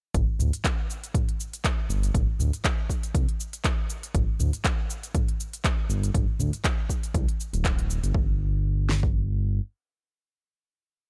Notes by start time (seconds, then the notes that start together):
0.14 G1, kick, closed hi-hat, mid tom, cabasa
0.39 D2, mid tom, cabasa
0.53 closed hi-hat, cabasa
0.64 kick, clap, closed hi-hat, cabasa
0.90 cabasa
1.04 closed hi-hat, cabasa
1.14 kick, closed hi-hat, mid tom, cabasa
1.29 closed hi-hat
1.40 cabasa
1.53 closed hi-hat, cabasa
1.65 kick, clap, closed hi-hat, cabasa
1.89 G1, cabasa
2.03 closed hi-hat, cabasa
2.15 G1, kick, closed hi-hat, mid tom, cabasa
2.39 D2, mid tom, cabasa
2.53 closed hi-hat, cabasa
2.65 kick, clap, closed hi-hat, cabasa
2.90 kick, cabasa
3.03 closed hi-hat, cabasa
3.15 C2, kick, closed hi-hat, cabasa
3.29 closed hi-hat
3.40 cabasa
3.53 closed hi-hat, cabasa
3.65 kick, clap, closed hi-hat, cabasa
3.90 cabasa
4.03 closed hi-hat, cabasa
4.15 G1, kick, closed hi-hat, mid tom, cabasa
4.39 D2, mid tom, cabasa
4.53 closed hi-hat, cabasa
4.65 kick, clap, closed hi-hat, cabasa
4.90 cabasa
5.03 closed hi-hat, cabasa
5.15 kick, closed hi-hat, mid tom, cabasa
5.28 closed hi-hat
5.40 cabasa
5.53 closed hi-hat, cabasa
5.64 kick, clap, closed hi-hat, cabasa
5.89 G1, cabasa
6.03 closed hi-hat, cabasa
6.14 G1, kick, closed hi-hat, mid tom, cabasa
6.39 D2, mid tom, cabasa
6.53 closed hi-hat, cabasa
6.64 kick, clap, closed hi-hat, cabasa
6.89 kick, cabasa
7.03 closed hi-hat, cabasa
7.14 C2, kick, closed hi-hat, cabasa
7.29 closed hi-hat
7.40 cabasa
7.53 D1, closed hi-hat, cabasa
7.64 kick, clap, closed hi-hat, cabasa
7.79 closed hi-hat
7.90 cabasa
8.03 G1, closed hi-hat, cabasa
8.15 G1, kick
8.89 snare
9.03 kick